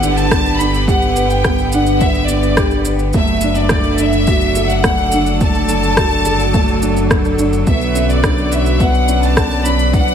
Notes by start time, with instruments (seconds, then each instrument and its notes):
Already playing: analog synth bass G1, string quartet D3 B3 E4 G4 B4, felt piano B3 D4 G4 B4, violin section F#5
0.03 felt piano D4, shaker
0.16 violin section A5, shaker
0.31 felt piano B3, kick, cross-stick, shaker
0.46 shaker
0.57 felt piano D4, violin section B5, shaker
0.74 shaker
0.88 felt piano G4, violin section F#5, kick, shaker
1.02 shaker
1.16 felt piano B4, shaker
1.29 violin section G5, shaker
1.44 felt piano B3, kick, cross-stick, shaker
1.58 shaker
1.71 felt piano D4, violin section F#5, shaker
1.86 shaker
2.00 felt piano B3, violin section E5, kick, shaker
2.15 shaker
2.27 felt piano D4, violin section D5, shaker
2.43 shaker
2.57 felt piano G4, kick, cross-stick, shaker
2.71 shaker
2.85 felt piano B4, shaker
2.99 shaker
3.13 analog synth bass F#1, string quartet F#3, felt piano A3, violin section E5, kick, shaker
3.27 shaker
3.41 felt piano D4, shaker
3.47 string quartet D3
3.55 violin section D5, shaker
3.69 felt piano A3, kick, cross-stick, shaker
3.78 string quartet A4
3.84 shaker
3.98 felt piano D4, string quartet D5, violin section E5, shaker
4.13 shaker
4.27 felt piano F#4, kick, shaker
4.41 shaker
4.55 felt piano A4, shaker
4.70 violin section F#5, shaker
4.84 felt piano A3, kick, cross-stick, shaker
4.98 shaker
5.12 felt piano D4, shaker
5.26 shaker
5.41 felt piano A3, violin section A5, kick, shaker
5.55 shaker
5.69 felt piano D4, shaker
5.83 shaker
5.97 felt piano F#4, kick, cross-stick, shaker
6.11 shaker
6.25 felt piano A4, shaker
6.40 shaker
6.54 felt piano A3, kick, shaker
6.68 shaker
6.82 felt piano D4, shaker
6.97 shaker
7.10 felt piano A3, kick, cross-stick, shaker
7.25 shaker
7.39 felt piano D4, shaker
7.53 shaker
7.67 analog synth bass B1, felt piano B3, violin section E5, kick, shaker
7.81 string quartet B4, shaker
7.95 felt piano C#4, shaker
8.10 violin section D5, shaker
8.23 felt piano D4, kick, cross-stick, shaker
8.38 string quartet D5, shaker
8.52 felt piano F#4, violin section E5, shaker
8.66 shaker
8.80 felt piano B3, violin section F#5, kick, shaker
8.95 shaker
9.08 felt piano C#4, shaker
9.23 violin section A5, shaker
9.37 kick, cross-stick, shaker
9.51 shaker
9.65 felt piano C#4, violin section B5, shaker
9.79 shaker
9.93 felt piano D4, violin section F#5, kick, shaker
10.08 shaker